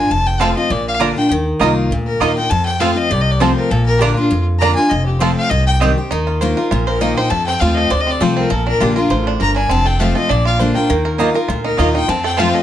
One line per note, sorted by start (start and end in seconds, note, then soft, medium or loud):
0.00 0.11 D4 soft
0.00 0.12 G#5 medium
0.10 0.52 F1 medium
0.10 0.68 F2 medium
0.10 0.28 A5 loud
0.27 0.42 G5 medium
0.40 0.56 F3 medium
0.40 0.56 A3 medium
0.40 0.50 C4 loud
0.40 0.48 C4 medium
0.40 0.56 C4 medium
0.40 0.50 F4 medium
0.40 0.48 F4 medium
0.40 0.56 F4 medium
0.40 0.48 A4 medium
0.40 0.50 C5 medium
0.40 0.56 F5 medium
0.40 0.50 A5 loud
0.57 0.71 C4 soft
0.57 0.70 F4 medium
0.57 0.72 D#5 medium
0.70 1.12 A#1 medium
0.70 1.28 A#2 medium
0.70 0.87 D5 medium
0.88 0.96 F5 loud
0.99 1.15 D3 medium
0.99 1.10 A#3 medium
0.99 1.16 A#3 medium
0.99 1.16 D4 medium
0.99 1.08 D4 medium
0.99 1.10 F4 medium
0.99 1.15 F4 medium
0.99 1.08 F4 medium
0.99 1.08 A#4 medium
0.99 1.10 D5 loud
0.99 1.10 A#5 loud
1.16 1.31 D4 soft
1.16 1.30 F4 medium
1.16 1.30 G5 medium
1.31 1.51 D#2 medium
1.31 1.60 D#3 loud
1.59 1.86 C2 medium
1.59 1.90 D#3 medium
1.59 1.70 A#3 loud
1.59 1.90 A#3 medium
1.59 1.68 D#4 medium
1.59 1.90 D#4 medium
1.59 1.70 F4 medium
1.59 1.68 F4 medium
1.59 1.90 F4 loud
1.59 1.68 A#4 medium
1.59 1.70 D#5 loud
1.59 1.70 A#5 loud
1.91 2.16 D2 medium
1.91 2.49 A#2 medium
2.07 2.23 A#4 medium
2.20 2.46 D#2 medium
2.20 2.36 D#3 medium
2.20 2.30 A#3 medium
2.20 2.37 A#3 medium
2.20 2.28 D#4 medium
2.20 2.37 D#4 medium
2.20 2.30 F4 loud
2.20 2.28 F4 medium
2.20 2.36 F4 medium
2.20 2.28 A#4 medium
2.20 2.31 D#5 loud
2.20 2.35 D#5 medium
2.20 2.31 A#5 loud
2.36 2.51 D#4 soft
2.36 2.50 F4 medium
2.36 2.51 G5 medium
2.50 3.08 F2 loud
2.50 2.92 F2 medium
2.50 2.65 A5 loud
2.66 2.82 G5 loud
2.80 2.96 F3 loud
2.80 2.96 A3 medium
2.80 2.90 C4 medium
2.80 2.88 C4 medium
2.80 2.96 C4 loud
2.80 2.90 F4 medium
2.80 2.95 F4 loud
2.80 2.88 F4 medium
2.80 2.88 A4 medium
2.80 2.91 C5 medium
2.80 2.98 F5 medium
2.80 2.91 A5 loud
2.96 3.11 C4 soft
2.96 3.10 F4 medium
2.96 3.13 D#5 loud
3.11 3.52 C2 medium
3.11 3.68 C3 medium
3.11 3.23 D5 medium
3.21 3.33 D#5 loud
3.31 3.42 D5 medium
3.40 3.69 F3 medium
3.40 3.70 A3 medium
3.40 3.50 C4 medium
3.40 3.48 C4 medium
3.40 3.70 C4 loud
3.40 3.51 F4 medium
3.40 3.48 F4 medium
3.40 3.70 F4 medium
3.40 3.49 A4 medium
3.40 3.56 C5 medium
3.40 3.51 C5 medium
3.40 3.51 A5 loud
3.56 3.72 A#4 medium
3.71 4.12 A#1 medium
3.71 4.28 A#2 loud
3.71 3.85 A4 medium
3.86 4.00 A#4 loud
3.99 4.16 D3 medium
3.99 4.10 A#3 medium
3.99 4.17 A#3 loud
3.99 4.08 D4 medium
3.99 4.17 D4 loud
3.99 4.11 F4 medium
3.99 4.16 F4 loud
3.99 4.09 F4 medium
3.99 4.14 G4 medium
3.99 4.09 A#4 medium
3.99 4.11 D5 loud
3.99 4.11 A#5 loud
4.15 4.31 D4 medium
4.15 4.44 F4 medium
4.15 4.31 F4 medium
4.31 4.88 F2 loud
4.31 4.73 F2 medium
4.59 4.76 D3 medium
4.59 4.70 A#3 medium
4.59 4.77 A#3 medium
4.59 4.68 D4 medium
4.59 4.77 D4 medium
4.59 4.71 F4 medium
4.59 4.69 F4 medium
4.59 4.76 F4 loud
4.59 4.69 A#4 medium
4.59 4.71 D5 loud
4.59 4.75 A#5 medium
4.59 4.71 A#5 loud
4.75 4.91 D4 medium
4.75 4.91 F4 medium
4.75 4.91 G#5 loud
4.90 5.33 F1 medium
4.90 5.48 F2 loud
4.90 5.05 D#5 medium
5.06 5.21 G4 soft
5.19 5.49 F3 loud
5.19 5.50 A3 medium
5.19 5.30 C4 loud
5.19 5.50 C4 loud
5.19 5.28 C4 medium
5.19 5.30 F4 loud
5.19 5.50 F4 loud
5.19 5.28 F4 medium
5.19 5.28 A4 medium
5.19 5.36 C5 medium
5.19 5.31 C5 medium
5.19 5.31 A5 loud
5.36 5.51 F5 loud
5.50 5.92 C2 loud
5.50 6.08 C3 medium
5.50 5.66 D#5 medium
5.67 5.75 G5 loud
5.80 5.97 D#3 medium
5.80 5.97 G3 medium
5.80 5.90 C4 medium
5.80 5.88 C4 medium
5.80 5.97 C4 medium
5.80 5.90 G4 medium
5.80 5.84 G4 medium
5.80 5.96 G4 medium
5.80 5.91 D#5 loud
5.80 5.91 G5 medium
5.98 6.12 C4 medium
5.98 6.11 G4 medium
6.11 6.52 D#2 medium
6.11 6.40 D#3 loud
6.11 6.54 D#4 medium
6.27 6.71 F4 medium
6.41 6.56 D#3 medium
6.41 6.57 A#3 loud
6.41 6.57 D#4 medium
6.41 6.56 F4 medium
6.41 6.84 C5 medium
6.57 6.71 D#4 soft
6.57 6.70 F4 medium
6.57 6.98 A#4 medium
6.71 7.13 A#1 loud
6.71 7.29 A#2 medium
6.71 7.61 F4 medium
6.87 7.03 A#4 medium
6.87 7.16 C5 medium
7.01 7.16 D#3 medium
7.01 7.16 A#3 loud
7.01 7.31 D#4 medium
7.01 7.17 D#4 medium
7.01 7.16 F4 medium
7.01 7.15 D#5 medium
7.16 7.31 D#4 medium
7.16 7.30 F4 medium
7.16 7.31 C5 medium
7.16 7.31 G5 medium
7.30 7.88 F2 loud
7.30 7.52 F2 medium
7.30 7.74 A4 medium
7.30 7.46 A5 medium
7.46 7.88 C4 medium
7.46 7.62 G5 loud
7.60 7.86 D#2 medium
7.60 7.89 F3 medium
7.60 7.90 A3 medium
7.60 7.90 C4 medium
7.60 8.80 F4 medium
7.60 7.90 F4 medium
7.60 7.76 F5 medium
7.75 8.18 A4 medium
7.75 7.92 D#5 loud
7.90 8.16 D2 medium
7.90 8.48 C3 loud
7.90 8.33 C5 medium
7.90 8.02 D5 medium
8.01 8.12 D#5 loud
8.07 8.35 C4 medium
8.07 8.24 D5 medium
8.21 8.46 C2 medium
8.21 8.49 F3 medium
8.21 8.49 A3 medium
8.21 8.50 C4 loud
8.21 8.50 F4 medium
8.21 8.50 A4 medium
8.21 8.37 C5 medium
8.37 8.51 C4 medium
8.37 8.54 A#4 medium
8.50 8.72 A#1 medium
8.50 9.07 A#2 loud
8.50 8.67 A4 medium
8.50 8.93 A#4 medium
8.67 9.08 D4 medium
8.67 8.83 A#4 loud
8.80 9.06 A#1 medium
8.80 8.96 D3 medium
8.80 8.96 A#3 loud
8.80 8.96 D4 medium
8.80 10.21 F4 medium
8.80 8.96 F4 medium
8.80 8.95 G4 medium
8.96 9.11 D4 medium
8.96 9.24 F4 medium
8.96 9.10 F4 medium
8.96 9.37 A#4 medium
9.10 9.36 A1 medium
9.10 9.39 A2 medium
9.10 9.53 C5 medium
9.27 9.55 D4 medium
9.40 9.66 G1 medium
9.40 9.69 G2 medium
9.40 9.70 A#4 medium
9.40 9.56 A#5 loud
9.56 9.69 D4 medium
9.56 9.73 G#5 medium
9.69 10.11 F1 medium
9.69 10.28 F2 loud
9.69 10.12 C4 medium
9.69 9.88 A5 loud
9.85 10.14 A4 medium
9.85 10.02 G5 loud
10.00 10.15 F3 medium
10.00 10.30 A3 medium
10.00 10.15 A3 medium
10.00 10.16 C4 loud
10.00 10.15 F4 loud
10.00 10.15 F5 medium
10.15 10.30 C4 medium
10.15 10.30 F4 medium
10.15 10.30 A4 medium
10.15 10.32 D#5 medium
10.29 10.71 A#1 medium
10.29 10.87 A#2 medium
10.29 10.72 D4 medium
10.29 10.46 D5 loud
10.45 11.22 F4 medium
10.45 10.55 F5 loud
10.59 10.75 D3 medium
10.59 10.75 A#3 medium
10.59 10.76 D4 medium
10.59 10.75 F4 medium
10.59 10.89 C5 medium
10.75 10.90 D4 soft
10.75 10.89 F4 medium
10.75 10.89 A#4 medium
10.75 10.88 G5 medium
10.90 11.31 D#2 medium
10.90 11.18 D#3 loud
10.90 11.32 A#3 medium
11.05 11.34 A#4 medium
11.18 11.35 D#3 medium
11.18 11.28 A#3 medium
11.18 11.35 A#3 medium
11.18 11.62 D#4 medium
11.18 11.34 D#4 medium
11.18 11.29 F4 loud
11.18 11.33 F4 medium
11.18 11.29 D#5 loud
11.18 11.29 A#5 medium
11.34 11.49 D#4 medium
11.34 11.48 F4 medium
11.34 11.76 A#4 medium
11.48 11.74 D2 medium
11.48 12.06 A#2 medium
11.48 11.98 F4 medium
11.64 11.94 D#4 medium
11.64 11.80 A#4 medium
11.77 12.04 D#2 medium
11.77 11.94 D#3 medium
11.77 11.88 A#3 medium
11.77 11.95 A#3 medium
11.77 11.95 D#4 medium
11.77 11.88 F4 loud
11.77 11.94 F4 medium
11.77 12.09 A#4 medium
11.77 11.88 D#5 medium
11.77 11.95 D#5 medium
11.77 11.88 A#5 loud
11.95 12.08 D#4 medium
11.95 12.09 D#4 medium
11.95 12.08 F4 medium
11.95 12.11 G5 loud
12.08 12.50 F2 medium
12.08 12.63 F2 loud
12.08 12.51 C4 medium
12.08 12.24 A5 medium
12.24 12.53 A4 medium
12.24 12.41 G5 medium
12.37 12.63 F3 medium
12.37 12.63 A3 medium
12.37 12.47 C4 medium
12.37 12.63 C4 loud
12.37 12.48 F4 loud
12.37 12.63 F4 loud
12.37 12.48 C5 medium
12.37 12.55 F5 medium
12.37 12.48 A5 loud
12.54 12.63 A4 medium
12.54 12.63 D#5 medium